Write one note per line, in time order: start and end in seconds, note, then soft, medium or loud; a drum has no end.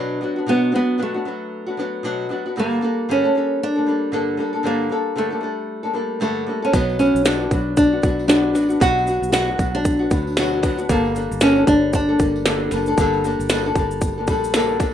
0.00 0.22 B2 medium
0.00 0.20 F#3 medium
0.00 0.21 B3 medium
0.00 0.22 D4 medium
0.00 0.45 D4 loud
0.00 0.23 F#4 medium
0.21 0.37 F#3 medium
0.21 0.38 B3 medium
0.21 0.37 D4 medium
0.21 0.35 F#4 medium
0.36 0.47 B3 soft
0.36 0.47 D4 medium
0.36 0.47 F#4 medium
0.46 0.73 B2 medium
0.46 0.71 F#3 medium
0.46 0.72 B3 medium
0.46 0.74 B3 loud
0.46 0.73 D4 medium
0.46 0.74 F#4 loud
0.72 0.98 F#3 medium
0.72 0.98 B3 medium
0.72 0.99 B3 medium
0.72 0.98 D4 medium
0.72 0.99 F#4 medium
0.98 1.15 B2 medium
0.98 1.15 F#3 medium
0.98 1.16 B3 medium
0.98 1.15 D4 medium
0.98 1.13 F#4 medium
1.03 2.28 A3 medium
1.14 1.25 B3 soft
1.14 1.26 D4 medium
1.14 1.26 F#4 medium
1.25 1.68 F#3 medium
1.25 1.68 B3 medium
1.25 1.67 D4 medium
1.25 1.65 F#4 medium
1.67 1.78 B3 soft
1.67 1.78 D4 medium
1.67 1.78 F#4 medium
1.77 2.03 F#3 medium
1.77 2.03 B3 medium
1.77 2.04 D4 medium
1.77 2.04 F#4 medium
2.03 2.30 B2 medium
2.03 2.28 F#3 medium
2.03 2.29 B3 medium
2.03 2.30 D4 loud
2.03 2.31 F#4 loud
2.29 2.45 F#3 medium
2.29 2.46 B3 medium
2.29 2.46 D4 medium
2.29 2.44 F#4 medium
2.46 2.57 B3 medium
2.46 2.57 D4 medium
2.46 2.56 F#4 medium
2.56 2.82 G2 medium
2.56 2.83 D3 medium
2.56 2.80 G3 medium
2.56 2.81 A#3 medium
2.56 3.12 A#3 loud
2.56 2.82 D4 medium
2.56 2.83 A4 medium
2.81 3.08 G3 medium
2.81 3.09 A#3 medium
2.81 3.09 D4 medium
2.81 3.09 A4 medium
3.09 3.24 G2 medium
3.09 3.25 D3 medium
3.09 3.25 G3 medium
3.09 3.25 A#3 medium
3.09 3.63 C#4 medium
3.09 3.24 D4 medium
3.09 3.23 A4 medium
3.24 3.34 G3 soft
3.24 3.34 A#3 medium
3.24 3.35 D4 medium
3.24 3.35 A4 medium
3.35 3.77 G3 medium
3.35 3.77 A#3 medium
3.35 3.76 D4 medium
3.35 3.74 A4 medium
3.63 4.69 D4 loud
3.76 3.85 G3 soft
3.76 3.87 A#3 medium
3.76 3.87 D4 medium
3.76 3.86 A4 medium
3.86 4.12 G3 medium
3.86 4.12 A#3 medium
3.86 4.12 D4 medium
3.86 4.13 A4 medium
4.12 4.38 G2 medium
4.12 4.39 D3 medium
4.12 4.36 G3 medium
4.12 4.37 A#3 medium
4.12 4.39 D4 loud
4.12 4.39 A4 medium
4.37 4.54 G3 medium
4.37 4.54 A#3 medium
4.37 4.53 D4 medium
4.37 4.52 A4 medium
4.53 4.63 G3 soft
4.53 4.64 A#3 medium
4.53 4.64 D4 medium
4.53 4.64 A4 medium
4.63 4.90 G2 medium
4.63 4.91 D3 medium
4.63 4.88 G3 medium
4.63 4.89 A#3 medium
4.63 5.18 A#3 loud
4.63 4.90 D4 medium
4.63 4.91 A4 medium
4.89 5.15 G3 medium
4.89 5.15 A#3 medium
4.89 5.16 D4 medium
4.89 5.16 A4 medium
5.16 5.32 G2 medium
5.16 5.32 D3 medium
5.16 5.32 G3 medium
5.16 6.18 A3 medium
5.16 5.32 A#3 medium
5.16 5.31 D4 medium
5.16 5.29 A4 medium
5.30 5.39 G3 soft
5.30 5.43 A#3 medium
5.30 5.42 D4 medium
5.30 5.42 A4 medium
5.41 5.84 G3 medium
5.41 5.83 D4 medium
5.41 5.82 A4 medium
5.83 5.92 G3 medium
5.83 5.93 A#3 medium
5.83 5.94 D4 medium
5.83 5.94 A4 medium
5.93 6.19 G3 medium
5.93 6.20 A#3 medium
5.93 6.21 D4 medium
5.93 6.21 A4 medium
6.20 6.47 G2 medium
6.20 6.47 D3 medium
6.20 6.45 G3 loud
6.20 6.60 A3 medium
6.20 6.46 A#3 medium
6.20 6.47 D4 medium
6.20 6.48 A4 medium
6.46 6.62 G3 medium
6.46 6.63 A#3 medium
6.46 6.62 D4 medium
6.46 6.61 A4 medium
6.62 6.73 G3 medium
6.62 6.74 A#3 medium
6.62 6.73 C#4 medium
6.62 6.74 D4 medium
6.62 6.73 A4 medium
6.73 7.12 B1 loud
6.73 6.99 B2 medium
6.73 6.98 F#3 medium
6.73 6.99 B3 loud
6.73 6.99 B3 medium
6.73 7.00 D4 medium
6.73 7.00 F#4 loud
6.73 kick loud
6.73 tambourine medium
6.73 shaker medium
6.89 tambourine soft
6.99 7.24 F#3 medium
6.99 7.25 B3 medium
6.99 7.25 C#4 medium
6.99 7.25 D4 medium
6.99 7.26 F#4 medium
6.99 tambourine soft
6.99 shaker soft
7.15 7.48 B1 medium
7.15 tambourine soft
7.15 shaker medium
7.25 7.41 B2 medium
7.25 7.41 F#3 medium
7.25 7.41 B3 medium
7.25 7.76 D4 medium
7.25 7.40 D4 medium
7.25 7.39 F#4 medium
7.25 snare loud
7.25 tambourine medium
7.25 shaker loud
7.40 7.51 B3 soft
7.40 7.51 D4 soft
7.40 7.51 F#4 medium
7.51 7.99 B1 loud
7.51 7.93 F#3 medium
7.51 7.93 B3 medium
7.51 7.93 D4 medium
7.51 7.91 F#4 medium
7.51 kick medium
7.51 tambourine medium
7.51 shaker medium
7.77 8.27 D4 loud
7.77 kick loud
7.77 tambourine medium
7.77 shaker medium
7.93 8.02 B3 soft
7.93 8.03 D4 medium
7.93 8.03 F#4 medium
8.02 8.55 B1 medium
8.02 8.27 F#3 medium
8.02 8.28 B3 medium
8.02 8.28 D4 medium
8.02 8.29 F#4 medium
8.02 kick loud
8.02 tambourine medium
8.02 shaker medium
8.19 tambourine soft
8.28 8.55 B2 medium
8.28 8.52 F#3 medium
8.28 8.53 B3 medium
8.28 8.82 D4 medium
8.28 8.54 D4 medium
8.28 8.55 F#4 medium
8.28 snare loud
8.28 tambourine medium
8.28 shaker medium
8.53 8.79 A1 loud
8.53 8.70 F#3 medium
8.53 8.71 B3 medium
8.53 8.69 D4 medium
8.53 8.68 F#4 medium
8.53 snare soft
8.53 tambourine soft
8.53 shaker medium
8.69 8.80 B3 medium
8.69 8.80 D4 medium
8.69 8.80 F#4 medium
8.69 shaker soft
8.80 9.20 B1 loud
8.80 9.07 B2 medium
8.80 9.04 F#3 loud
8.80 9.06 B3 medium
8.80 9.06 D4 loud
8.80 9.31 F#4 loud
8.80 9.08 F#4 loud
8.80 kick loud
8.80 tambourine medium
8.80 shaker medium
8.98 tambourine soft
9.06 9.32 F#3 medium
9.06 9.32 B3 medium
9.06 9.32 D4 medium
9.06 9.33 F#4 medium
9.06 tambourine soft
9.06 shaker soft
9.22 9.56 B1 medium
9.22 shaker medium
9.32 9.48 B2 medium
9.32 9.49 F#3 medium
9.32 9.49 B3 medium
9.32 9.48 D4 medium
9.32 9.76 F#4 loud
9.32 9.46 F#4 medium
9.32 snare loud
9.32 tambourine medium
9.32 shaker loud
9.48 9.58 B3 soft
9.48 9.58 D4 medium
9.48 9.59 F#4 medium
9.58 10.07 B1 medium
9.58 10.00 F#3 medium
9.58 10.01 B3 medium
9.58 10.00 D4 medium
9.58 9.98 F#4 medium
9.58 kick medium
9.58 tambourine medium
9.58 shaker medium
9.75 10.23 D4 medium
9.75 tambourine soft
9.85 kick loud
9.85 tambourine soft
9.85 shaker medium
9.99 10.10 B3 soft
9.99 10.11 D4 medium
9.99 10.11 F#4 medium
10.11 10.85 D2 medium
10.11 10.36 F#3 medium
10.11 10.37 B3 medium
10.11 10.38 D4 medium
10.11 10.38 F#4 medium
10.11 kick loud
10.11 tambourine medium
10.11 shaker medium
10.27 tambourine soft
10.37 10.63 B2 loud
10.37 10.61 F#3 loud
10.37 10.62 B3 loud
10.37 10.63 D4 loud
10.37 10.64 F#4 loud
10.37 snare loud
10.37 tambourine medium
10.37 shaker medium
10.62 10.79 F#3 medium
10.62 10.79 B3 medium
10.62 10.78 D4 medium
10.62 10.76 F#4 medium
10.62 kick loud
10.62 snare soft
10.62 tambourine soft
10.62 shaker medium
10.77 10.90 B3 medium
10.77 10.90 D4 medium
10.77 10.89 F#4 medium
10.77 shaker soft
10.89 11.28 G1 loud
10.89 11.15 G2 medium
10.89 11.15 D3 medium
10.89 11.14 G3 medium
10.89 11.43 A#3 loud
10.89 11.15 A#3 loud
10.89 11.15 D4 medium
10.89 11.16 A4 loud
10.89 kick loud
10.89 tambourine soft
10.89 shaker medium
11.05 tambourine soft
11.15 11.41 G3 medium
11.15 11.41 A#3 medium
11.15 11.42 D4 medium
11.15 11.42 A4 medium
11.15 tambourine soft
11.15 shaker medium
11.31 11.65 G1 loud
11.31 shaker medium
11.41 11.57 G2 medium
11.41 11.57 D3 medium
11.41 11.57 G3 medium
11.41 11.57 A#3 medium
11.41 11.67 C#4 loud
11.41 11.56 D4 medium
11.41 11.54 A4 medium
11.41 snare loud
11.41 tambourine medium
11.41 shaker loud
11.56 11.66 G3 medium
11.56 11.67 A#3 medium
11.56 11.67 D4 medium
11.56 11.67 A4 medium
11.67 12.15 G1 medium
11.67 12.09 G3 medium
11.67 12.10 A#3 medium
11.67 11.94 D4 loud
11.67 12.09 D4 medium
11.67 12.07 A4 medium
11.67 kick medium
11.67 tambourine medium
11.67 shaker soft
11.93 14.50 D4 loud
11.93 kick medium
11.93 tambourine medium
11.93 shaker medium
12.09 12.18 G3 soft
12.09 12.19 A#3 medium
12.09 12.20 D4 medium
12.09 12.19 A4 medium
12.19 12.67 G1 loud
12.19 12.45 G3 medium
12.19 12.46 A#3 medium
12.19 12.46 D4 medium
12.19 12.46 A4 medium
12.19 kick loud
12.19 tambourine medium
12.19 shaker medium
12.36 tambourine soft
12.46 12.72 G2 medium
12.46 12.72 D3 loud
12.46 12.70 G3 medium
12.46 12.71 A#3 medium
12.46 12.72 D4 medium
12.46 12.72 A4 medium
12.46 snare loud
12.46 tambourine medium
12.46 shaker medium
12.71 12.96 F#1 loud
12.71 12.87 G3 medium
12.71 12.87 A#3 medium
12.71 12.88 D4 medium
12.71 12.87 A4 medium
12.71 snare soft
12.71 tambourine medium
12.71 shaker medium
12.86 12.98 A#3 medium
12.86 12.98 D4 medium
12.86 12.98 A4 medium
12.86 shaker soft
12.91 12.98 G3 medium
12.98 13.36 G1 loud
12.98 13.24 G2 loud
12.98 13.24 D3 loud
12.98 13.23 G3 loud
12.98 13.24 A#3 loud
12.98 13.25 D4 loud
12.98 13.25 A4 loud
12.98 kick loud
12.98 tambourine medium
12.98 shaker medium
13.13 tambourine soft
13.24 13.49 G3 medium
13.24 13.50 A#3 medium
13.24 13.50 D4 medium
13.24 13.50 A4 medium
13.24 tambourine soft
13.24 shaker medium
13.39 13.73 G1 medium
13.39 tambourine soft
13.39 shaker medium
13.49 13.65 G2 medium
13.49 13.65 D3 medium
13.49 13.65 G3 medium
13.49 13.66 A#3 medium
13.49 13.66 D4 loud
13.49 13.65 A4 medium
13.49 snare loud
13.49 tambourine medium
13.49 shaker medium
13.66 13.75 G3 medium
13.66 13.76 A#3 medium
13.66 13.77 D4 medium
13.66 13.76 A4 medium
13.75 14.28 G1 medium
13.75 14.17 G3 medium
13.75 14.18 A#3 medium
13.75 14.17 D4 medium
13.75 14.16 A4 medium
13.75 kick loud
13.75 tambourine medium
13.75 shaker medium
13.91 shaker soft
14.01 kick loud
14.01 tambourine soft
14.01 shaker medium
14.18 14.27 G3 soft
14.18 14.28 A#3 medium
14.18 14.28 D4 medium
14.18 14.28 A4 medium
14.27 14.94 A#1 medium
14.27 14.54 G3 medium
14.27 14.54 A#3 medium
14.27 14.55 D4 medium
14.27 14.55 A4 medium
14.27 kick loud
14.27 tambourine medium
14.27 shaker medium
14.44 tambourine soft
14.44 shaker medium
14.54 14.80 G2 medium
14.54 14.80 D3 loud
14.54 14.79 G3 medium
14.54 14.79 A#3 loud
14.54 14.81 D4 loud
14.54 14.81 A4 loud
14.54 snare loud
14.54 tambourine medium
14.54 shaker medium
14.80 14.94 G3 medium
14.80 14.94 A#3 medium
14.80 14.94 D4 medium
14.80 14.93 A4 medium
14.80 kick loud
14.80 snare soft
14.80 tambourine medium
14.80 shaker medium